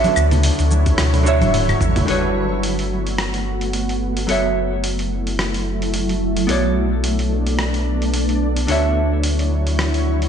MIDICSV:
0, 0, Header, 1, 5, 480
1, 0, Start_track
1, 0, Tempo, 550459
1, 1819, Time_signature, 4, 2, 24, 8
1, 8969, End_track
2, 0, Start_track
2, 0, Title_t, "Hollow-body jazz guitar"
2, 0, Program_c, 0, 26
2, 0, Note_on_c, 0, 50, 90
2, 0, Note_on_c, 0, 62, 78
2, 0, Note_on_c, 0, 66, 74
2, 0, Note_on_c, 0, 73, 72
2, 0, Note_on_c, 0, 76, 98
2, 1064, Note_off_c, 0, 50, 0
2, 1070, Note_off_c, 0, 62, 0
2, 1076, Note_off_c, 0, 66, 0
2, 1076, Note_on_c, 0, 50, 82
2, 1080, Note_off_c, 0, 73, 0
2, 1083, Note_off_c, 0, 76, 0
2, 1088, Note_on_c, 0, 62, 78
2, 1097, Note_on_c, 0, 66, 76
2, 1106, Note_on_c, 0, 73, 80
2, 1116, Note_on_c, 0, 76, 92
2, 1782, Note_off_c, 0, 50, 0
2, 1788, Note_off_c, 0, 62, 0
2, 1793, Note_off_c, 0, 66, 0
2, 1793, Note_on_c, 0, 55, 61
2, 1797, Note_off_c, 0, 73, 0
2, 1802, Note_off_c, 0, 76, 0
2, 1802, Note_on_c, 0, 62, 57
2, 1807, Note_on_c, 0, 66, 53
2, 1815, Note_on_c, 0, 69, 54
2, 1823, Note_on_c, 0, 71, 55
2, 1833, Note_on_c, 0, 73, 69
2, 3701, Note_off_c, 0, 55, 0
2, 3705, Note_off_c, 0, 62, 0
2, 3707, Note_off_c, 0, 66, 0
2, 3711, Note_off_c, 0, 69, 0
2, 3715, Note_off_c, 0, 71, 0
2, 3721, Note_off_c, 0, 73, 0
2, 3721, Note_on_c, 0, 54, 60
2, 3735, Note_on_c, 0, 66, 56
2, 3743, Note_on_c, 0, 69, 58
2, 3753, Note_on_c, 0, 73, 59
2, 3759, Note_on_c, 0, 76, 72
2, 5625, Note_off_c, 0, 54, 0
2, 5631, Note_off_c, 0, 66, 0
2, 5636, Note_off_c, 0, 69, 0
2, 5641, Note_off_c, 0, 73, 0
2, 5641, Note_on_c, 0, 59, 65
2, 5644, Note_off_c, 0, 76, 0
2, 5651, Note_on_c, 0, 66, 56
2, 5661, Note_on_c, 0, 69, 61
2, 5672, Note_on_c, 0, 73, 58
2, 5680, Note_on_c, 0, 74, 64
2, 7545, Note_off_c, 0, 59, 0
2, 7550, Note_off_c, 0, 66, 0
2, 7555, Note_off_c, 0, 69, 0
2, 7560, Note_off_c, 0, 73, 0
2, 7560, Note_on_c, 0, 50, 63
2, 7564, Note_off_c, 0, 74, 0
2, 7569, Note_on_c, 0, 62, 59
2, 7579, Note_on_c, 0, 66, 54
2, 7587, Note_on_c, 0, 73, 58
2, 7599, Note_on_c, 0, 76, 68
2, 8969, Note_off_c, 0, 50, 0
2, 8969, Note_off_c, 0, 62, 0
2, 8969, Note_off_c, 0, 66, 0
2, 8969, Note_off_c, 0, 73, 0
2, 8969, Note_off_c, 0, 76, 0
2, 8969, End_track
3, 0, Start_track
3, 0, Title_t, "Ambient pad"
3, 0, Program_c, 1, 92
3, 0, Note_on_c, 1, 50, 80
3, 0, Note_on_c, 1, 54, 73
3, 0, Note_on_c, 1, 64, 88
3, 0, Note_on_c, 1, 73, 79
3, 1796, Note_off_c, 1, 50, 0
3, 1796, Note_off_c, 1, 54, 0
3, 1797, Note_off_c, 1, 73, 0
3, 1798, Note_off_c, 1, 64, 0
3, 1816, Note_on_c, 1, 57, 68
3, 1817, Note_on_c, 1, 66, 81
3, 1819, Note_on_c, 1, 59, 69
3, 3718, Note_off_c, 1, 57, 0
3, 3719, Note_off_c, 1, 66, 0
3, 3720, Note_off_c, 1, 59, 0
3, 3737, Note_on_c, 1, 57, 67
3, 3739, Note_on_c, 1, 64, 85
3, 3741, Note_on_c, 1, 54, 71
3, 5640, Note_off_c, 1, 64, 0
3, 5641, Note_off_c, 1, 54, 0
3, 5660, Note_on_c, 1, 59, 66
3, 5663, Note_on_c, 1, 62, 84
3, 7543, Note_off_c, 1, 57, 0
3, 7560, Note_off_c, 1, 59, 0
3, 7562, Note_off_c, 1, 62, 0
3, 7573, Note_on_c, 1, 54, 68
3, 7575, Note_on_c, 1, 64, 77
3, 7576, Note_on_c, 1, 73, 71
3, 7577, Note_on_c, 1, 50, 72
3, 8969, Note_off_c, 1, 50, 0
3, 8969, Note_off_c, 1, 54, 0
3, 8969, Note_off_c, 1, 64, 0
3, 8969, Note_off_c, 1, 73, 0
3, 8969, End_track
4, 0, Start_track
4, 0, Title_t, "Sub bass"
4, 0, Program_c, 2, 38
4, 143, Note_on_c, 2, 38, 108
4, 445, Note_off_c, 2, 38, 0
4, 517, Note_on_c, 2, 38, 94
4, 806, Note_off_c, 2, 38, 0
4, 860, Note_on_c, 2, 38, 84
4, 1231, Note_on_c, 2, 26, 79
4, 1245, Note_off_c, 2, 38, 0
4, 1523, Note_off_c, 2, 26, 0
4, 1580, Note_on_c, 2, 33, 77
4, 1750, Note_off_c, 2, 33, 0
4, 1823, Note_on_c, 2, 31, 75
4, 3720, Note_off_c, 2, 31, 0
4, 3742, Note_on_c, 2, 30, 84
4, 5639, Note_off_c, 2, 30, 0
4, 5660, Note_on_c, 2, 35, 87
4, 7558, Note_off_c, 2, 35, 0
4, 7576, Note_on_c, 2, 38, 81
4, 8969, Note_off_c, 2, 38, 0
4, 8969, End_track
5, 0, Start_track
5, 0, Title_t, "Drums"
5, 37, Note_on_c, 9, 46, 31
5, 38, Note_on_c, 9, 63, 93
5, 42, Note_on_c, 9, 82, 28
5, 43, Note_on_c, 9, 60, 53
5, 124, Note_off_c, 9, 46, 0
5, 125, Note_off_c, 9, 63, 0
5, 129, Note_off_c, 9, 82, 0
5, 130, Note_off_c, 9, 60, 0
5, 140, Note_on_c, 9, 75, 80
5, 145, Note_on_c, 9, 82, 76
5, 228, Note_off_c, 9, 75, 0
5, 232, Note_off_c, 9, 82, 0
5, 274, Note_on_c, 9, 46, 30
5, 278, Note_on_c, 9, 64, 86
5, 279, Note_on_c, 9, 82, 31
5, 361, Note_off_c, 9, 46, 0
5, 365, Note_off_c, 9, 64, 0
5, 366, Note_off_c, 9, 82, 0
5, 379, Note_on_c, 9, 46, 74
5, 384, Note_on_c, 9, 82, 44
5, 466, Note_off_c, 9, 46, 0
5, 471, Note_off_c, 9, 82, 0
5, 513, Note_on_c, 9, 46, 31
5, 518, Note_on_c, 9, 82, 31
5, 600, Note_off_c, 9, 46, 0
5, 605, Note_off_c, 9, 82, 0
5, 622, Note_on_c, 9, 82, 75
5, 625, Note_on_c, 9, 63, 62
5, 709, Note_off_c, 9, 82, 0
5, 712, Note_off_c, 9, 63, 0
5, 748, Note_on_c, 9, 60, 56
5, 751, Note_on_c, 9, 46, 31
5, 754, Note_on_c, 9, 36, 57
5, 756, Note_on_c, 9, 82, 34
5, 835, Note_off_c, 9, 60, 0
5, 838, Note_off_c, 9, 46, 0
5, 841, Note_off_c, 9, 36, 0
5, 843, Note_off_c, 9, 82, 0
5, 854, Note_on_c, 9, 37, 76
5, 854, Note_on_c, 9, 46, 68
5, 854, Note_on_c, 9, 48, 59
5, 859, Note_on_c, 9, 82, 43
5, 941, Note_off_c, 9, 37, 0
5, 941, Note_off_c, 9, 46, 0
5, 941, Note_off_c, 9, 48, 0
5, 946, Note_off_c, 9, 82, 0
5, 992, Note_on_c, 9, 46, 42
5, 992, Note_on_c, 9, 48, 54
5, 997, Note_on_c, 9, 82, 28
5, 1080, Note_off_c, 9, 46, 0
5, 1080, Note_off_c, 9, 48, 0
5, 1085, Note_off_c, 9, 82, 0
5, 1103, Note_on_c, 9, 82, 71
5, 1190, Note_off_c, 9, 82, 0
5, 1229, Note_on_c, 9, 63, 83
5, 1235, Note_on_c, 9, 46, 33
5, 1235, Note_on_c, 9, 47, 66
5, 1240, Note_on_c, 9, 82, 32
5, 1317, Note_off_c, 9, 63, 0
5, 1322, Note_off_c, 9, 46, 0
5, 1322, Note_off_c, 9, 47, 0
5, 1327, Note_off_c, 9, 82, 0
5, 1342, Note_on_c, 9, 46, 66
5, 1342, Note_on_c, 9, 47, 79
5, 1347, Note_on_c, 9, 82, 41
5, 1429, Note_off_c, 9, 46, 0
5, 1429, Note_off_c, 9, 47, 0
5, 1434, Note_off_c, 9, 82, 0
5, 1475, Note_on_c, 9, 46, 32
5, 1475, Note_on_c, 9, 47, 82
5, 1475, Note_on_c, 9, 75, 74
5, 1480, Note_on_c, 9, 82, 29
5, 1562, Note_off_c, 9, 46, 0
5, 1562, Note_off_c, 9, 47, 0
5, 1562, Note_off_c, 9, 75, 0
5, 1567, Note_off_c, 9, 82, 0
5, 1576, Note_on_c, 9, 45, 94
5, 1581, Note_on_c, 9, 82, 70
5, 1663, Note_off_c, 9, 45, 0
5, 1668, Note_off_c, 9, 82, 0
5, 1710, Note_on_c, 9, 45, 92
5, 1710, Note_on_c, 9, 46, 46
5, 1715, Note_on_c, 9, 82, 34
5, 1720, Note_on_c, 9, 60, 54
5, 1722, Note_on_c, 9, 64, 85
5, 1797, Note_off_c, 9, 45, 0
5, 1797, Note_off_c, 9, 46, 0
5, 1802, Note_off_c, 9, 82, 0
5, 1807, Note_off_c, 9, 60, 0
5, 1809, Note_off_c, 9, 64, 0
5, 1815, Note_on_c, 9, 46, 59
5, 1902, Note_off_c, 9, 46, 0
5, 2297, Note_on_c, 9, 46, 57
5, 2384, Note_off_c, 9, 46, 0
5, 2432, Note_on_c, 9, 46, 28
5, 2519, Note_off_c, 9, 46, 0
5, 2673, Note_on_c, 9, 46, 27
5, 2761, Note_off_c, 9, 46, 0
5, 2777, Note_on_c, 9, 37, 68
5, 2777, Note_on_c, 9, 46, 59
5, 2864, Note_off_c, 9, 37, 0
5, 2864, Note_off_c, 9, 46, 0
5, 2911, Note_on_c, 9, 46, 36
5, 2998, Note_off_c, 9, 46, 0
5, 3150, Note_on_c, 9, 46, 27
5, 3237, Note_off_c, 9, 46, 0
5, 3256, Note_on_c, 9, 46, 54
5, 3343, Note_off_c, 9, 46, 0
5, 3395, Note_on_c, 9, 46, 25
5, 3482, Note_off_c, 9, 46, 0
5, 3633, Note_on_c, 9, 46, 39
5, 3721, Note_off_c, 9, 46, 0
5, 3739, Note_on_c, 9, 46, 59
5, 3826, Note_off_c, 9, 46, 0
5, 4218, Note_on_c, 9, 46, 58
5, 4305, Note_off_c, 9, 46, 0
5, 4352, Note_on_c, 9, 46, 26
5, 4439, Note_off_c, 9, 46, 0
5, 4594, Note_on_c, 9, 46, 26
5, 4681, Note_off_c, 9, 46, 0
5, 4700, Note_on_c, 9, 37, 66
5, 4700, Note_on_c, 9, 46, 57
5, 4787, Note_off_c, 9, 37, 0
5, 4787, Note_off_c, 9, 46, 0
5, 4834, Note_on_c, 9, 46, 34
5, 4921, Note_off_c, 9, 46, 0
5, 5075, Note_on_c, 9, 46, 26
5, 5162, Note_off_c, 9, 46, 0
5, 5177, Note_on_c, 9, 46, 54
5, 5264, Note_off_c, 9, 46, 0
5, 5314, Note_on_c, 9, 46, 26
5, 5401, Note_off_c, 9, 46, 0
5, 5551, Note_on_c, 9, 46, 41
5, 5638, Note_off_c, 9, 46, 0
5, 5659, Note_on_c, 9, 46, 59
5, 5746, Note_off_c, 9, 46, 0
5, 6137, Note_on_c, 9, 46, 59
5, 6224, Note_off_c, 9, 46, 0
5, 6270, Note_on_c, 9, 46, 25
5, 6357, Note_off_c, 9, 46, 0
5, 6510, Note_on_c, 9, 46, 27
5, 6597, Note_off_c, 9, 46, 0
5, 6615, Note_on_c, 9, 37, 63
5, 6615, Note_on_c, 9, 46, 52
5, 6702, Note_off_c, 9, 37, 0
5, 6702, Note_off_c, 9, 46, 0
5, 6750, Note_on_c, 9, 46, 34
5, 6837, Note_off_c, 9, 46, 0
5, 6992, Note_on_c, 9, 46, 26
5, 7079, Note_off_c, 9, 46, 0
5, 7094, Note_on_c, 9, 46, 58
5, 7182, Note_off_c, 9, 46, 0
5, 7229, Note_on_c, 9, 46, 25
5, 7316, Note_off_c, 9, 46, 0
5, 7469, Note_on_c, 9, 46, 40
5, 7556, Note_off_c, 9, 46, 0
5, 7572, Note_on_c, 9, 46, 58
5, 7660, Note_off_c, 9, 46, 0
5, 8053, Note_on_c, 9, 46, 56
5, 8140, Note_off_c, 9, 46, 0
5, 8190, Note_on_c, 9, 46, 26
5, 8277, Note_off_c, 9, 46, 0
5, 8429, Note_on_c, 9, 46, 26
5, 8516, Note_off_c, 9, 46, 0
5, 8536, Note_on_c, 9, 37, 63
5, 8536, Note_on_c, 9, 46, 51
5, 8623, Note_off_c, 9, 37, 0
5, 8623, Note_off_c, 9, 46, 0
5, 8669, Note_on_c, 9, 46, 33
5, 8757, Note_off_c, 9, 46, 0
5, 8911, Note_on_c, 9, 46, 26
5, 8969, Note_off_c, 9, 46, 0
5, 8969, End_track
0, 0, End_of_file